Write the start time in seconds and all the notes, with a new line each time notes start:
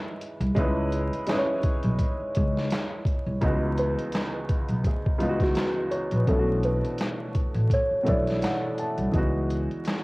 Already playing: G#3 C#4 D#4 E4 B4
0.21 closed hi-hat
0.40 C2, closed hi-hat
0.55 C#2 G#3 C#4 D#4 E4, kick, closed hi-hat
0.59 B4
0.92 closed hi-hat
1.13 closed hi-hat
1.27 G#3 C#4 D#4, snare, clap, closed hi-hat
1.31 E4 B4
1.39 C#5
1.63 kick, closed hi-hat
1.83 B1, closed hi-hat
1.99 kick, closed hi-hat
2.20 muted upright bass stroke
2.35 C#2, kick, closed hi-hat
2.57 snare
2.70 snare, clap, closed hi-hat
3.05 kick, closed hi-hat
3.26 C2
3.41 C#2 E3 G#3 B3 D#4, kick, closed hi-hat
3.46 F#4
3.78 B4, closed hi-hat
3.99 closed hi-hat
4.12 snare, clap, closed hi-hat
4.49 kick, closed hi-hat
4.68 B1, closed hi-hat
4.84 G#4, kick, closed hi-hat
5.06 muted upright bass stroke, kick
5.18 C#2 E3 G#3 B3 D#4, closed hi-hat
5.23 F4
5.29 F#4
5.40 F#4, kick, snare, closed hi-hat
5.55 B4, snare, clap, closed hi-hat
5.91 C#5, closed hi-hat
6.11 A#1 B4, closed hi-hat
6.28 B1 B2 E3 A3 C#4 A4, kick, closed hi-hat
6.32 D4 E4
6.39 F#4
6.63 B4, closed hi-hat
6.85 closed hi-hat
6.98 snare, clap, closed hi-hat
7.35 kick, closed hi-hat
7.55 A1, closed hi-hat
7.70 C#5, kick, closed hi-hat
7.91 muted upright bass stroke
8.03 B2 E3 A3 B3 D4, closed hi-hat
8.08 B1 E4 D5, kick
8.28 snare, closed hi-hat
8.42 F#5, snare, clap, closed hi-hat
8.78 A5, closed hi-hat
8.98 C2, closed hi-hat
9.12 C#2 E3 G#3 B3 D#4, kick, closed hi-hat
9.17 F#4
9.50 closed hi-hat
9.71 closed hi-hat
9.85 snare, clap, closed hi-hat